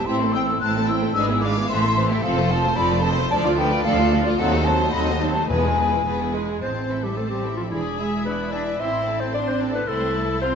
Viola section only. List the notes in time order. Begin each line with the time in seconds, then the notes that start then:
0.07 C4 E4
0.20 A3 C4
0.34 C4 E4
0.47 A3 C4
0.60 C4 E4
0.74 A3 C4
0.88 C4 E4
1.01 A3 C4
1.15 G#3 D4
1.29 B3 E4
1.43 G#3 D4
1.56 B3 E4
1.69 E3 C4
1.83 A3
1.97 E3 C4
2.11 A3
2.24 F3 C4
2.37 A3
2.50 F3 C4
2.64 A3
2.77 F3 C4
2.91 A3
3.05 F3 C4
3.19 A3
3.32 F3 D4
3.45 A3 F4
3.57 F3 D4
3.71 A3 F4
3.85 F3 D4
3.98 A3 F4
4.11 F3 D4
4.25 A3 F4
4.39 F#3 C4
4.53 A3 D#4
4.67 F#3 C4
4.81 A3 D#4
4.95 F#3 C4
5.08 A3 D#4
5.22 F#3 C4
5.37 A3 D#4
5.50 G#3 B3
5.65 E3 G#3
5.79 G#3 B3
5.92 E3 G#3
6.06 B3
6.35 G#3
7.18 C4
7.72 G#4
8.26 E4
8.80 C4
9.34 D4
9.88 E4
10.41 F4